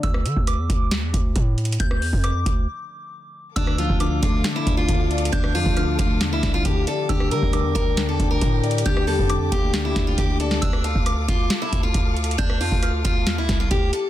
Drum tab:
HH |x-----x-----x-----x-----x-----x-----x-----x-x-x-|x-----o-----x-----x-----------------------------|x-----x-----x-----x-----x-----x-----x-----x-x-x-|x-----o-----x-----x-----x-----x-----x-----x-----|
SD |---r--------r-----------o-----------------------|---r--------r-----------------------------------|---r--------r-----------o-----------------------|---r--------r-----------o-----o-----------------|
BD |o--------o--------o-----------o-----o-----------|o--------o--------o-----------------------------|o--------o--------o-----------o-----o-----------|o--------o--------o-----------o-----o-----------|

HH |x-----x-----x-----x-----x-----x-----x-----x-x-x-|x-----o-----x-----x-----x-----x-----x-----x-----|x-----x-----x-----x-----x-----x-----x-----x-x-x-|x-----o-----x-----x-----x-----x-----x-----x-----|
SD |---r--------r-----------o-----------------------|---r--------r-----------o-----o--------------o--|---r--------r-----------o-----------------------|---r--------r-----------o-----o-----------------|
BD |o--------o--------o-----------o-----o-----------|o--------o--------o-----------o-----o-----------|o--------o--------o-----------o-----o-----------|o--------o--------o-----------o-----o-----------|